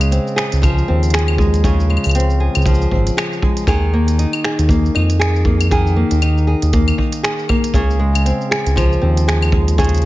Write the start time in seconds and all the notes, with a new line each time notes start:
Already playing: C#2 C#3 G#3 G#4
0.01 closed hi-hat, cabasa, claves
0.11 C4, closed hi-hat, cabasa
0.27 cabasa
0.36 G#4, finger snap
0.52 C#2, closed hi-hat, cabasa
0.62 F3, kick, closed hi-hat, cabasa, claves
0.78 cabasa
0.88 D#2 C4
1.03 closed hi-hat, cabasa
1.10 G#4, finger snap, closed hi-hat
1.14 closed hi-hat, cabasa
1.19 closed hi-hat
1.28 claves
1.38 G#3, kick, cabasa
1.54 closed hi-hat, cabasa
1.64 C#3 G#4, kick, closed hi-hat, cabasa
1.80 cabasa
1.90 G#3, claves
1.97 claves
2.04 C#2, closed hi-hat, cabasa, claves
2.09 closed hi-hat, claves
2.15 C4, closed hi-hat, cabasa
2.20 closed hi-hat
2.30 cabasa
2.40 G#4
2.55 C#2, closed hi-hat, cabasa, claves
2.62 cabasa
2.66 F3, kick, closed hi-hat, cabasa
2.74 cabasa
2.82 cabasa
2.91 G#1 C4, kick
3.07 closed hi-hat, cabasa
3.17 G#4, finger snap, closed hi-hat, cabasa, claves
3.33 cabasa
3.42 G#3, kick
3.57 closed hi-hat, cabasa
3.67 D#2 D#3 G#4, kick, closed hi-hat, cabasa, claves
3.93 A#3
4.08 closed hi-hat, cabasa
4.19 D#4, closed hi-hat, cabasa
4.33 cabasa, claves
4.44 G#4, finger snap
4.59 D#2, closed hi-hat, cabasa
4.69 A#3, kick, closed hi-hat, cabasa
4.86 cabasa
4.95 F2 D#4, claves
5.10 closed hi-hat, cabasa
5.19 G#4, finger snap, closed hi-hat, cabasa
5.36 cabasa
5.45 A#3, kick
5.61 closed hi-hat, cabasa, claves
5.71 D#3 G#4, kick, closed hi-hat, cabasa
5.87 cabasa
5.96 A#3
6.11 D#2, closed hi-hat, cabasa
6.22 D#4, closed hi-hat, cabasa, claves
6.38 cabasa
6.47 G#4
6.62 D#2, closed hi-hat, cabasa
6.73 A#3, kick, closed hi-hat, cabasa
6.88 cabasa, claves
6.98 D#4, kick
7.13 closed hi-hat, cabasa
7.23 G#4, finger snap, closed hi-hat, cabasa
7.39 cabasa
7.49 A#3, kick, claves
7.64 closed hi-hat, cabasa
7.74 C#2 C#3 G#4, kick, closed hi-hat, cabasa
7.90 cabasa
7.99 G#3
8.15 closed hi-hat, cabasa, claves
8.26 C4, closed hi-hat, cabasa
8.41 cabasa
8.51 G#4, finger snap
8.66 C#2, closed hi-hat, cabasa
8.76 F3, kick, closed hi-hat, cabasa, claves
8.93 cabasa
9.01 D#2 C4
9.17 closed hi-hat, cabasa
9.28 G#4, finger snap, closed hi-hat, cabasa
9.42 cabasa, claves
9.52 G#3, kick
9.68 closed hi-hat, cabasa
9.78 C#3 G#4, kick, closed hi-hat, cabasa
9.85 closed hi-hat
9.89 closed hi-hat
9.95 closed hi-hat, cabasa
9.98 closed hi-hat
10.02 closed hi-hat